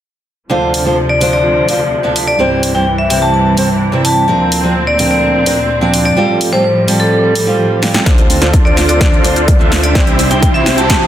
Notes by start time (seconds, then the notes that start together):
0.50 D2 C3 D3 F3 A3 D4 F4 C5
0.74 open hi-hat
0.85 D3 A3 D4 F4 C5
1.09 D5
1.21 D3 A3 D4 F4 C5, open hi-hat
1.33 D5
1.68 D3 A3 D4 F4 C5, open hi-hat
2.03 D3 A3 D4 F4 E5
2.16 open hi-hat
2.28 D5
2.39 C2 G2 C3 E3 G3 C4 E4 C5
2.63 open hi-hat
2.74 C3 G3 C4 E4 C5 G5
2.98 E5
3.10 C3 G3 C4 E4 C5 E5, open hi-hat
3.22 A5
3.34 A5
3.57 C3 G3 C4 E4 C5, open hi-hat
3.92 C3 G3 C4 E4 E5
4.05 A5, open hi-hat
4.28 D2 A#2 F3 C4 D4 A#4
4.52 open hi-hat
4.63 F3 C4 D4 A#4
4.87 D5
4.98 F3 C4 D4 A#4, open hi-hat
5.11 D5
5.46 F3 C4 D4 A#4, open hi-hat
5.81 F3 C4 D4 D5
5.94 open hi-hat
6.05 D5
6.16 A2 F3 G3 C4 F4 A4
6.41 open hi-hat
6.52 G3 C4 F4 A4 C5
6.64 C5
6.88 G3 C4 F4 A4, open hi-hat
7.00 A4
7.35 open hi-hat
7.47 G3 C4 F4 C5
7.82 G3 C4 F4 D5, snare, open hi-hat
7.94 G3 C4 F4 A4, snare
8.05 D2 D3 A3 C4 D4 F4 A4 C5 D5, kick, snare, closed hi-hat, riser, shaker
8.18 closed hi-hat, shaker
8.30 open hi-hat, shaker
8.41 D2 D3 A3 D4 F4 A4 C5 D5, snare, closed hi-hat, shaker
8.54 kick, closed hi-hat, shaker
8.65 D2 D4 F4 A4 C5 D5, shaker
8.76 D3 A3 D4 F4 C5, snare, open hi-hat, shaker
8.89 D2 D4 F4 A4 C5 D5, closed hi-hat, shaker
9.01 kick, snare, closed hi-hat, shaker
9.13 shaker
9.24 D3 A3 D4 F4 C5, open hi-hat, shaker
9.36 D2 D4 F4 A4 C5 D5, closed hi-hat, shaker
9.48 kick, closed hi-hat, shaker
9.59 D2 D3 A3 D4 F4 A4 C5 E5, shaker
9.72 snare, open hi-hat, shaker
9.83 D5, closed hi-hat, shaker
9.95 C3 G3 C4 E4 C5 E5, kick, snare, closed hi-hat, shaker
10.07 closed hi-hat, shaker
10.19 open hi-hat, shaker
10.30 C2 C3 G3 C4 E4 G4 C5 G5, closed hi-hat, shaker
10.42 kick, closed hi-hat, shaker
10.54 C2 C4 E4 G4 C5 E5 G5, shaker
10.65 C3 G3 C4 E4 C5 E5, snare, open hi-hat, shaker
10.78 C2 C4 E4 G4 C5 G5 A5, closed hi-hat, shaker
10.90 A5, kick, snare, closed hi-hat, shaker
11.02 shaker